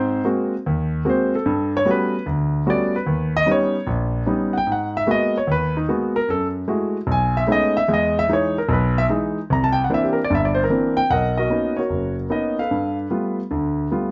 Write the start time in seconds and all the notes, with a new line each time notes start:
Already playing: G#2 C4 C5
0.24 G#3 A#3 C4 F#4
0.66 D#2
1.05 G#3 A#3 C4 F#4
1.10 C5
1.35 A4
1.46 G2
1.77 C#5
1.85 G3 A3 B3 C#4 F#4
1.91 B4
2.26 D2
2.66 G3 A3 B3 C#4 F#4 D5
2.96 B4
3.07 D#2
3.37 D#5
3.46 G3 B3 C#4 D#4
3.51 C#5
3.87 A#1
4.26 G3 B3 C#4 D#4
4.58 G5
4.67 G#2
4.72 F#5
4.97 E5
5.07 G#3 A#3 B3 F#4
5.11 D#5
5.38 C#5
5.47 D#2
5.52 B4
5.77 D#4
5.88 G#3 A#3 B3 F#4
6.16 A#4
6.28 F#2 A4
6.68 G#3 A3 E4 F#4
7.07 B1
7.12 G#5
7.37 E5
7.47 G#3 A3 B3 C#4 D#4
7.52 D#5
7.77 E5
7.88 E2 G#3
7.94 D#5
8.19 E5
8.28 E3 G#3 D#4
8.33 C#5
8.58 A#4
8.69 B1
8.73 B4
8.98 E5
9.09 E3 G#3 D#4
9.50 C2 A#5
9.64 A5
9.73 G5
9.84 F#5
9.90 E3 A#3 C4 D4
9.94 E5
10.04 G4
10.13 A#4
10.24 D5
10.30 G1 G2
10.35 E5
10.45 D5
10.55 C5
10.64 A#4
10.70 E3 A#3 C4 D4
10.97 G5
11.10 B1 A#4 D#5 F#5
11.37 F#4 A#4 D#5
11.50 A#3 B3 C#4 D#4
11.77 F#4 A#4 C#5
11.90 F#1
12.30 A#3 B3 C#4 D#4 D#5
12.59 A4 B4 F5
12.71 G2
13.10 G3 A3 B3 F4
13.51 D2 D3
13.91 G3 A3 B3 F4